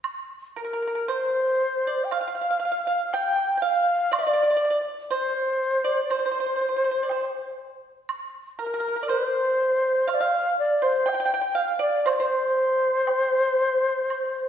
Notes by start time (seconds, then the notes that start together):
0.04 high woodblock
0.56 A#4
0.64 A#4
0.73 A#4
0.82 A#4
0.87 A#4
0.95 A#4
1.08 C5, high woodblock
1.87 D5
2.04 G5
2.11 F5, high woodblock
2.21 F5
2.28 F5
2.35 F5
2.41 F5
2.50 F5
2.60 F5
2.65 F5
2.72 F5
2.87 F5
3.13 G5, low woodblock
3.56 G5
3.62 F5
4.11 D5, high woodblock
4.18 D5
4.27 D5
4.33 D5
4.43 D5
4.50 D5
4.57 D5
4.65 D5
4.70 D5
5.11 C5, high woodblock
5.84 D5
6.04 D5
6.10 C5, high woodblock
6.19 C5
6.26 C5
6.31 C5
6.40 C5
6.46 C5
6.56 C5
6.61 C5
6.69 C5
6.76 C5
6.84 C5
6.91 C5
7.03 D5
7.09 C5, low woodblock
8.09 high woodblock
8.59 A#4
8.66 A#4
8.74 A#4
8.80 A#4
8.88 A#4
8.96 A#4
9.03 D5
9.08 C5, high woodblock
10.07 F5, high woodblock
10.14 D5
10.20 F5
10.59 D5
10.82 C5
11.06 G5, low woodblock
11.14 G5
11.20 G5
11.26 G5
11.34 G5
11.41 G5
11.55 F5
11.79 D5
12.06 C5, high woodblock
12.13 D5
12.20 C5
13.07 high woodblock, low woodblock
14.10 high woodblock